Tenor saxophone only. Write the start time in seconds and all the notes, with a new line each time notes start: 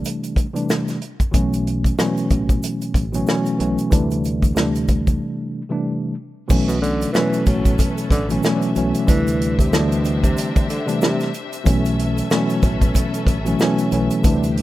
6.68 B2
6.82 D3
7.12 E3
7.47 F#3
8.11 D3
9.08 E3
9.59 C3
9.73 B2
10.23 C3
10.69 D3
11.02 C3